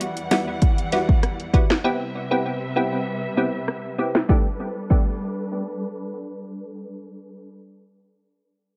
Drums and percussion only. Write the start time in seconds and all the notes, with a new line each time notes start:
0.01 closed hi-hat
0.17 closed hi-hat
0.31 snare, clap, closed hi-hat
0.62 kick, closed hi-hat
0.78 closed hi-hat
0.92 snare, closed hi-hat
1.09 kick
1.23 cross-stick, closed hi-hat
1.40 closed hi-hat
1.54 kick, closed hi-hat
1.70 snare, clap
3.68 cross-stick
4.15 snare, clap
4.29 kick, snare
4.90 kick, crash